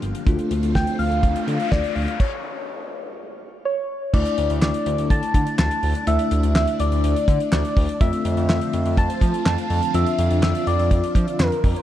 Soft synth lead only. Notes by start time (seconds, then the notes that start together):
0.75 G5
0.99 F5
1.72 D5
1.95 F5
2.20 C#5
3.65 C#5
4.14 D5
4.62 D5
5.11 A5
5.59 A5
6.07 E5
6.56 E5
6.80 D5
7.53 D5
8.01 E5
8.50 E5
8.98 A5
9.46 A5
9.95 E5
10.43 E5
10.67 D5
11.40 A#4